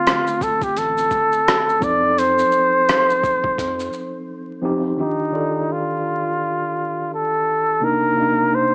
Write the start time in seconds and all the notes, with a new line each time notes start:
Already playing: D3 A3 C4 F4
0.07 cross-stick, closed hi-hat, shaker
0.27 shaker
0.41 A4, kick, shaker
0.62 G4, kick, shaker
0.76 A1 A4, closed hi-hat, shaker
0.98 shaker
1.11 kick, shaker
1.32 shaker
1.48 cross-stick, closed hi-hat, shaker
1.69 shaker
1.80 F2 F3 C4 D#4 A4 D5, kick, shaker
2.18 C5, closed hi-hat, shaker
2.39 shaker
2.51 shaker
2.89 cross-stick, closed hi-hat, shaker
3.10 shaker
3.23 kick, shaker
3.44 kick
3.58 F2, kick, closed hi-hat, shaker
3.80 shaker
3.93 shaker
4.62 F3 C4 D#4 G4
4.97 D#3 D4 D#4 F4
5.01 G4
5.32 D#3 F4 A4 D5
5.72 F4
7.14 A4
7.80 C3 A#3 D4 D#4
7.85 A#4
8.15 C3 A#3 D4 D#4
8.55 C5